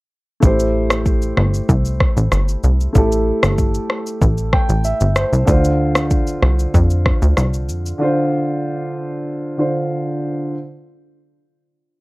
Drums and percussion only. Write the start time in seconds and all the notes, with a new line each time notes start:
0.43 kick, shaker
0.59 shaker
0.90 cross-stick, shaker
1.06 kick, shaker
1.22 shaker
1.37 cross-stick
1.54 shaker
1.69 kick, shaker
1.85 shaker
2.00 kick, cross-stick
2.17 shaker
2.32 cross-stick, shaker
2.48 shaker
2.63 shaker
2.81 shaker
2.95 kick, shaker
3.12 shaker
3.43 cross-stick, shaker
3.58 kick, shaker
3.75 shaker
3.90 cross-stick
4.07 shaker
4.22 kick, shaker
4.38 shaker
4.53 kick, cross-stick
4.69 shaker
4.85 shaker
5.01 shaker
5.16 cross-stick, shaker
5.33 shaker
5.48 kick, shaker
5.65 shaker
5.95 cross-stick, shaker
6.11 kick, shaker
6.27 shaker
6.42 cross-stick
6.59 shaker
6.74 kick, shaker
6.90 shaker
7.06 kick, cross-stick
7.22 shaker
7.37 cross-stick, shaker
7.54 shaker
7.69 shaker
7.86 shaker